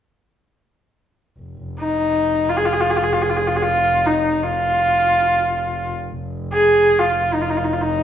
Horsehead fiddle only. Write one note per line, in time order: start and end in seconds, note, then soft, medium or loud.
1.80 2.51 D#4 medium
2.49 2.58 F4 medium
2.57 2.67 G#4 medium
2.65 2.74 F4 medium
2.73 2.82 G#4 medium
2.81 2.92 F4 medium
2.90 2.98 G#4 medium
2.97 3.05 F4 medium
3.03 3.15 G#4 medium
3.13 3.23 F4 medium
3.22 3.31 G#4 medium
3.30 3.38 F4 medium
3.37 3.49 G#4 medium
3.47 3.58 F4 medium
3.56 3.64 G#4 medium
3.62 4.08 F4 medium
4.06 4.45 D#4 medium
4.43 5.94 F4 medium
6.53 7.01 G#4 medium
6.99 7.35 F4 medium
7.34 7.43 D#4 medium
7.42 7.51 F4 medium
7.50 7.59 D#4 medium
7.57 7.65 F4 medium
7.64 7.75 D#4 medium
7.73 7.83 F4 medium
7.81 8.03 D#4 medium